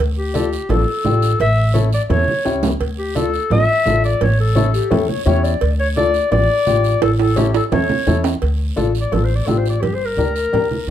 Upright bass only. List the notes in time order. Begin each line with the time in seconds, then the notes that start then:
0.00 D2
0.69 A1
1.04 A1
1.40 A1
2.10 E2
2.46 C#2
2.80 D2
3.50 A1
3.86 A1
4.21 A1
4.91 E2
5.26 E2
5.62 D2
6.32 A1
6.67 A1
7.02 A1
7.72 E2
8.07 E2
8.42 D2
8.77 A1
9.12 A1
9.47 A1
9.83 G1
10.17 D2
10.53 D2